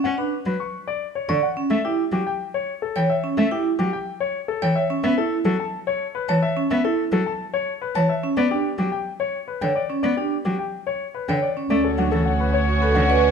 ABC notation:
X:1
M:3/4
L:1/16
Q:1/4=108
K:Glyd
V:1 name="Grand piano"
f B z B c' z d z c c' f z | e G z G g z c z A g e z | e G z G g z c z A g e z | e A z A a z c z B a e z |
e A z A a z c z B a e z | d G z G g z c z B g d z | d G z G g z c z B g d z | [K:D] d A f A f B c z B f d z |]
V:2 name="Clarinet"
z12 | z12 | z12 | z12 |
z12 | z12 | z12 | [K:D] c12 |]
V:3 name="Vibraphone"
z D z6 z d z C | z E z6 z c z C | z E z6 z c z C | z E z6 z c z C |
z E z6 z c z C | z D z6 z c z C | z D z6 z c z C | [K:D] C z D z4 z A z B z |]
V:4 name="String section"
z12 | z12 | z12 | z12 |
z12 | z12 | z12 | [K:D] [CF]12 |]
V:5 name="Cello" clef=bass
C z2 F, z4 z D, z2 | A, z2 F, z4 z E, z2 | A, z2 F, z4 z E, z2 | B, z2 F, z4 z E, z2 |
B, z2 F, z4 z E, z2 | B, z2 F, z4 z D, z2 | B, z2 F, z4 z D, z2 | [K:D] A, z F, E, z4 z D, z2 |]
V:6 name="Double bass" clef=bass
z12 | z12 | z12 | z12 |
z12 | z12 | z12 | [K:D] D,,12 |]